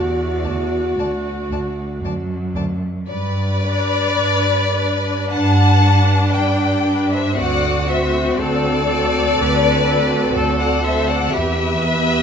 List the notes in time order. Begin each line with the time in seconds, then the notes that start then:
Already playing: E2 F#4 D5
0.44 D2 D5 A5
0.98 D2 D5 A5
1.51 D2 D5 A5
2.02 D2 F#2 D5 A5
2.55 D2 D5 A5
3.08 G2 B4 D5
3.62 D4 B4
4.17 G2
4.76 D4 B4
5.31 G2 D4 F#5 A5
5.83 D4 B4
6.32 G2 D5 G5
6.86 D4 B4
7.11 C5 E5
7.36 D2 C4 F#4 D5 F#5
7.88 C4 F#4 C5 E5
8.37 D2 A4 D5
8.87 C4 F#4
9.36 D2 B4
9.86 C4 F#4
10.34 D2 A4
10.60 D5 F#5
10.83 C4 F#4 C5 E5
11.08 D5 F#5
11.32 E2 G4 B4 E5
11.82 B3 G4 B4